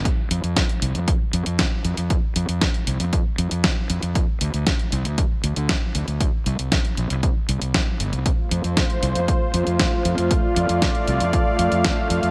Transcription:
<<
  \new Staff \with { instrumentName = "Analog synth pad" } { \time 4/4 \key f \major \tempo 4 = 117 << { r1 | r1 | r1 | r1 |
<a f' f''>1~ | <a f' f''>1 | } \\ { r1 | r1 | r1 | r1 |
c''1 | d''1 | } >> }
  \new Staff \with { instrumentName = "Fingered electric bass" } { \clef bass \time 4/4 \key f \major r8 f,16 f,16 r8 c,16 f,16 r8 f,16 f,16 r8 f,16 f,16 | r8 f,16 f,16 r8 c,16 f,16 r8 f,16 f,16 r8 f,16 f,16 | r8 d,16 d,16 r8 c,16 d,16 r8 d,16 d,16 r8 d,16 d,16 | r8 c,16 c,16 r8 bes,,16 c,16 r8 c,16 c,16 r8 g,,16 c,16 |
r8 f,16 f,16 r8 c,16 f,16 r8 f,16 f,16 r8 f,16 f,16 | r8 f,16 f,16 r8 c,16 f,16 r8 f,16 f,16 r8 f,16 f,16 | }
  \new DrumStaff \with { instrumentName = "Drums" } \drummode { \time 4/4 <hh bd>8 hh16 hh16 <hh bd sn>16 hh16 hh16 hh16 <hh bd>8 hh16 hh16 <hh bd sn>8 hh16 hh16 | <hh bd>8 hh16 hh16 <hh bd sn>16 hh16 hh16 hh16 <hh bd>8 hh16 hh16 <hh bd sn>8 hh16 hh16 | <hh bd>8 hh16 hh16 <hh bd sn>16 hh16 hh16 hh16 <hh bd>8 hh16 hh16 <hh bd sn>8 hh16 hh16 | <hh bd>8 hh16 hh16 <hh bd sn>16 hh16 hh16 hh16 <hh bd>8 hh16 hh16 <hh bd sn>8 hh16 hh16 |
<hh bd>8 hh16 hh16 <hh bd sn>16 hh16 hh16 hh16 <hh bd>8 hh16 hh16 <hh bd sn>8 hh16 hh16 | <hh bd>8 hh16 hh16 <hh bd sn>16 hh16 hh16 hh16 <hh bd>8 hh16 hh16 <hh bd sn>8 hh16 hh16 | }
>>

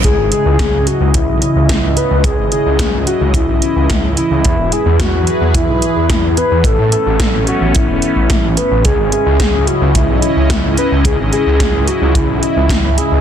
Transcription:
<<
  \new Staff \with { instrumentName = "Soft synth lead" } { \time 4/4 \key cis \minor \tempo 4 = 109 gis'8 gis'4 fis'8 e'4. b'8 | gis'8 gis'4 fis'8 e'4. e'8~ | e'8 gis'8 fis'4 e'4. b'8 | a'8 a'4 fis'8 e'4. b'8 |
gis'8 gis'4 fis'8 e'4. b'8 | gis'8 gis'4 fis'8 e'4. gis'8 | }
  \new Staff \with { instrumentName = "Analog synth pad" } { \time 4/4 \key cis \minor <cis cis' e' dis''>1~ | <cis cis' e' dis''>1 | <e gis' b'>1 | <a b cis'>1 |
<cis cis' e' dis''>1~ | <cis cis' e' dis''>1 | }
  \new Staff \with { instrumentName = "Detuned saw bass" } { \clef bass \time 4/4 \key cis \minor cis,16 gis,,16 r16 cis,16 cis,16 cis,16 r16 cis,16 cis,16 b,,16 r16 cis,16 cis,16 cis,16 r16 cis,16 | cis,16 gis,,16 r16 cis,16 cis,16 cis,16 r16 cis,16 cis,16 b,,16 r16 cis,16 cis,16 cis,16 r16 cis,16 | e,16 e,,16 r16 e,16 e,16 e,16 r16 e,16 e,16 b,,16 r16 e,16 e,16 e,16 r16 e,16 | a,,16 a,16 r16 a,,16 a,,16 a,,16 r16 a,,16 a,,16 e,,16 r16 a,,16 a,,16 a,,16 r16 a,,16 |
cis,16 gis,,16 r16 cis,16 cis,16 cis,16 r16 cis,16 cis,16 b,,16 r16 cis,16 cis,16 cis,16 r16 cis,16 | cis,16 gis,,16 r16 cis,16 cis,16 cis,16 r16 cis,16 cis,16 b,,16 r16 cis,16 cis,16 cis,16 r16 cis,16 | }
  \new DrumStaff \with { instrumentName = "Drums" } \drummode { \time 4/4 <hh bd>8 hh8 <hh bd sn>8 hh8 <hh bd>8 hh8 <hh bd sn>8 hh8 | <hh bd>8 hh8 <hh bd sn>8 hh8 <hh bd>8 hh8 <hh bd sn>8 hh8 | <hh bd>8 hh8 <hh bd sn>8 hh8 <hh bd>8 hh8 <hh bd sn>8 hh8 | <hh bd>8 hh8 <hh bd sn>8 hh8 <hh bd>8 hh8 <hh bd sn>8 hh8 |
<hh bd>8 hh8 <hh bd sn>8 hh8 <hh bd>8 hh8 <hh bd sn>8 hh8 | <hh bd>8 hh8 <hh bd sn>8 hh8 <hh bd>8 hh8 <hh bd sn>8 hh8 | }
>>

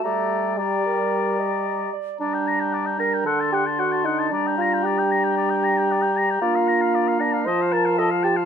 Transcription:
<<
  \new Staff \with { instrumentName = "Flute" } { \time 4/4 \key g \minor \tempo 4 = 114 bes''4 bes''2~ bes''8 r8 | bes''2 c'''2 | bes''1~ | bes''2 a''2 | }
  \new Staff \with { instrumentName = "Oboe" } { \time 4/4 \key g \minor d''4 d''2~ d''8 r8 | d''16 g''16 bes''16 g''16 d''16 g''16 bes''16 g''16 fis''16 a''16 fis''16 a''16 fis''16 a''16 fis''16 a''16 | d''16 g''16 bes''16 g''16 d''16 g''16 bes''16 g''16 d''16 g''16 bes''16 g''16 d''16 g''16 bes''16 g''16 | d''16 f''16 bes''16 f''16 d''16 f''16 bes''16 f''16 ees''16 f''16 a''16 f''16 ees''16 f''16 a''16 f''16 | }
  \new Staff \with { instrumentName = "Clarinet" } { \time 4/4 \key g \minor g'4 g'8 bes'4 ees''4 d''8 | d'1~ | d'1 | d'2 f'2 | }
  \new Staff \with { instrumentName = "Bassoon" } { \time 4/4 \key g \minor a4 g2~ g8 r8 | d'4. bes'8 a'8 g'8 fis'8 ees'8 | d'8 f'8 g'2. | f'4. d'8 c''8 bes'8 a'8 g'8 | }
  \new Staff \with { instrumentName = "French horn" } { \clef bass \time 4/4 \key g \minor g2.~ g8 r8 | g2 d2 | g1 | bes2 f2 | }
>>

